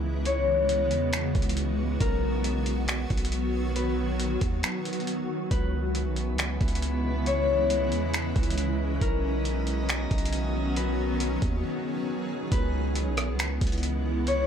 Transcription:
0.00 0.93 C#2 medium
0.00 1.97 C#3 medium
0.00 1.97 E3 medium
0.00 1.97 G#3 medium
0.00 5.47 B3 medium
0.00 0.24 E4 medium
0.00 0.55 B4 loud
0.25 5.47 F#4 loud
0.25 2.17 C#5 loud
0.25 closed hi-hat medium
0.69 closed hi-hat medium
0.91 1.33 E2 loud
0.91 closed hi-hat medium
1.13 finger snap loud
1.13 closed hi-hat medium
1.35 1.98 C#2 medium
1.35 kick medium
1.35 closed hi-hat soft
1.42 closed hi-hat medium
1.49 closed hi-hat medium
1.57 closed hi-hat medium
2.00 3.06 B1 loud
2.00 5.47 D#3 medium
2.00 5.47 F#3 medium
2.00 3.82 A#4 loud
2.00 kick loud
2.00 closed hi-hat medium
2.44 closed hi-hat medium
2.66 closed hi-hat medium
2.88 finger snap loud
2.88 closed hi-hat medium
3.10 4.38 B1 medium
3.10 kick medium
3.10 closed hi-hat soft
3.17 closed hi-hat medium
3.25 closed hi-hat medium
3.32 closed hi-hat medium
3.76 5.51 B4 medium
3.76 closed hi-hat medium
4.20 closed hi-hat medium
4.41 4.63 D#2 loud
4.41 kick medium
4.41 closed hi-hat medium
4.63 finger snap loud
4.63 closed hi-hat medium
4.85 closed hi-hat medium
4.93 closed hi-hat medium
5.00 closed hi-hat soft
5.07 closed hi-hat medium
5.51 6.07 C#2 loud
5.51 8.98 C#3 medium
5.51 8.98 E3 medium
5.51 8.98 G#3 medium
5.51 7.25 B3 medium
5.51 8.98 C#4 medium
5.51 8.98 E4 medium
5.51 8.98 B4 medium
5.51 7.56 B4 loud
5.51 8.98 E5 medium
5.51 kick loud
5.51 closed hi-hat medium
5.95 closed hi-hat medium
6.06 6.35 B1 loud
6.16 closed hi-hat medium
6.33 6.59 C#2 loud
6.38 finger snap loud
6.38 closed hi-hat medium
6.61 7.93 C#2 loud
6.61 kick medium
6.61 closed hi-hat soft
6.68 closed hi-hat medium
6.75 closed hi-hat medium
6.82 closed hi-hat medium
7.26 12.48 C#4 medium
7.26 9.18 C#5 loud
7.26 closed hi-hat medium
7.70 closed hi-hat medium
7.92 8.33 E2 loud
7.92 closed hi-hat medium
8.14 finger snap loud
8.14 closed hi-hat medium
8.36 8.99 C#2 medium
8.36 kick medium
8.36 closed hi-hat soft
8.43 closed hi-hat medium
8.50 closed hi-hat medium
8.58 closed hi-hat medium
9.01 10.07 B1 loud
9.01 12.48 D#3 medium
9.01 12.48 F#3 medium
9.01 12.48 B3 medium
9.01 10.75 F#4 loud
9.01 10.83 A#4 loud
9.01 12.48 D#5 loud
9.01 12.48 A#5 medium
9.01 kick loud
9.01 closed hi-hat medium
9.45 closed hi-hat medium
9.67 closed hi-hat medium
9.89 finger snap loud
9.89 closed hi-hat medium
10.11 11.38 B1 loud
10.11 kick loud
10.11 closed hi-hat soft
10.18 closed hi-hat medium
10.25 closed hi-hat medium
10.33 closed hi-hat medium
10.76 12.50 G#4 medium
10.76 12.52 B4 medium
10.76 closed hi-hat medium
11.20 closed hi-hat medium
11.42 11.63 D#2 loud
11.42 kick medium
11.42 closed hi-hat medium
12.52 13.08 C#2 loud
12.52 14.47 C#3 medium
12.52 14.47 E3 medium
12.52 14.47 G#3 medium
12.52 14.25 B3 medium
12.52 14.47 E4 medium
12.52 14.47 B4 loud
12.52 kick loud
12.52 closed hi-hat medium
12.95 closed hi-hat medium
13.06 13.35 B1 medium
13.17 cross-stick medium
13.17 closed hi-hat medium
13.34 13.60 C#2 loud
13.39 finger snap loud
13.39 closed hi-hat medium
13.61 14.47 C#2 loud
13.61 kick loud
13.61 closed hi-hat medium
13.67 closed hi-hat medium
13.72 closed hi-hat medium
13.78 closed hi-hat soft
13.83 closed hi-hat medium
14.27 14.47 C#5 loud
14.27 closed hi-hat medium

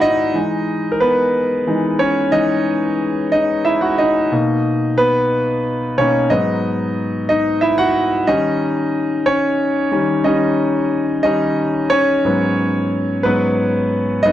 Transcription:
0.00 0.31 G#2 soft
0.00 0.32 F#3 soft
0.00 0.32 B3 medium
0.00 0.03 D#4 medium
0.00 0.33 D#4 medium
0.00 0.38 E4 medium
0.00 0.37 F#4 medium
0.00 0.37 D5 medium
0.00 0.96 D#5 loud
0.00 0.37 E5 medium
0.00 0.38 F#5 medium
0.34 1.29 E3 soft
0.34 1.30 G#3 soft
0.34 1.30 D#4 medium
0.92 1.00 A#4 medium
1.00 1.96 B3 medium
1.00 2.03 B4 medium
1.67 1.97 E3 soft
1.67 1.97 G#3 soft
1.67 1.97 D#4 soft
1.99 2.31 C#4 medium
1.99 2.34 C#5 medium
2.31 4.27 E3 soft
2.31 4.28 G#3 soft
2.31 3.28 D#4 medium
2.31 3.30 D#5 medium
3.32 3.64 D#4 medium
3.32 3.66 D#5 medium
3.65 3.81 E4 medium
3.65 3.82 E5 medium
3.81 3.98 F#4 medium
3.81 3.99 F#5 medium
3.98 4.31 D#4 medium
3.98 5.01 D#5 medium
4.32 4.76 B2 soft
4.32 4.76 A#3 soft
4.32 4.76 D#4 soft
4.98 5.94 B3 medium
4.98 6.00 B4 medium
5.98 6.27 B2 soft
5.98 6.28 A#3 soft
5.98 6.29 C#4 medium
5.98 6.28 D#4 soft
5.98 6.28 C#5 medium
6.30 8.23 G#2 medium
6.30 8.23 F#3 soft
6.30 8.24 B3 medium
6.30 7.25 D#4 medium
6.30 7.27 D#5 medium
7.29 7.60 D#4 medium
7.29 7.63 D#5 medium
7.61 7.77 E4 medium
7.61 7.78 E5 medium
7.78 8.24 F#4 medium
7.78 8.29 F#5 loud
8.27 8.71 D#3 soft
8.27 8.72 G3 soft
8.27 8.72 C#4 medium
8.27 9.23 D#4 medium
8.27 9.29 D#5 medium
9.26 9.91 C#4 medium
9.26 10.28 C#5 medium
9.92 10.22 D#3 soft
9.92 10.22 G3 soft
9.92 10.22 C#4 medium
10.24 11.20 D#3 soft
10.24 11.21 G3 soft
10.24 11.21 C#4 medium
10.24 11.24 D#4 medium
10.24 11.21 D#5 medium
11.23 11.54 D#3 soft
11.23 11.55 G3 soft
11.23 11.55 C#4 medium
11.23 11.88 D#4 medium
11.23 11.92 D#5 medium
11.90 13.21 C#4 medium
11.90 13.28 C#5 loud
12.24 13.20 G#2 soft
12.24 13.21 F#3 soft
12.24 13.21 B3 medium
13.23 13.55 G#2 soft
13.23 13.55 F#3 soft
13.23 14.21 B3 medium
13.23 14.20 B4 medium
14.23 14.32 G#2 soft
14.23 14.32 F#3 soft
14.23 14.32 B3 medium
14.23 14.32 D#4 medium
14.23 14.32 D#5 medium

